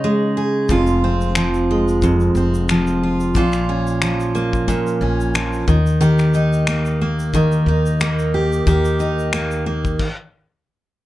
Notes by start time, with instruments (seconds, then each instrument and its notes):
Already playing: steel-string acoustic guitar C#3 C#4 D#4 G#4
0.04 steel-string acoustic guitar G#3
0.37 steel-string acoustic guitar G#4
0.69 upright bass F1, steel-string acoustic guitar F2 F4, kick, shaker
0.87 shaker
1.04 steel-string acoustic guitar C4
1.21 shaker
1.35 steel-string acoustic guitar F3, finger snap, shaker
1.54 shaker
1.71 steel-string acoustic guitar G#3
1.88 shaker
2.02 steel-string acoustic guitar F2, kick, shaker
2.20 shaker
2.35 upright bass F1, steel-string acoustic guitar C4, shaker
2.54 shaker
2.69 steel-string acoustic guitar F3, finger snap, shaker
2.87 shaker
3.03 steel-string acoustic guitar F4
3.20 shaker
3.35 upright bass A#1, steel-string acoustic guitar A#2 F4, kick, shaker
3.53 finger snap, shaker
3.69 steel-string acoustic guitar C#4
3.87 shaker
4.02 steel-string acoustic guitar F3, finger snap, shaker
4.20 shaker
4.35 steel-string acoustic guitar A#3, shaker
4.53 kick, shaker
4.68 steel-string acoustic guitar A#2, kick, shaker
4.87 shaker
5.01 upright bass A#1, steel-string acoustic guitar C#4
5.20 shaker
5.35 steel-string acoustic guitar F3, finger snap, shaker
5.53 shaker
5.68 upright bass D#2, steel-string acoustic guitar D#3, kick, shaker
5.86 shaker
6.01 steel-string acoustic guitar D#3 G4, shaker
6.19 finger snap, shaker
6.34 steel-string acoustic guitar D#4, shaker
6.53 shaker
6.67 steel-string acoustic guitar A#3, finger snap, shaker
6.85 shaker
7.01 steel-string acoustic guitar A#3
7.19 shaker
7.34 steel-string acoustic guitar D#3, kick, shaker
7.52 shaker
7.66 upright bass D#2, steel-string acoustic guitar D#4
7.86 shaker
8.01 steel-string acoustic guitar A#3, finger snap, shaker
8.19 shaker
8.34 steel-string acoustic guitar G4
8.53 shaker
8.67 upright bass D#2, steel-string acoustic guitar D#3 G4, kick, shaker
8.85 shaker
9.00 steel-string acoustic guitar D#4, shaker
9.19 shaker
9.33 steel-string acoustic guitar A#3, finger snap, shaker
9.51 shaker
9.66 steel-string acoustic guitar A#3
9.85 kick, shaker
9.99 kick, crash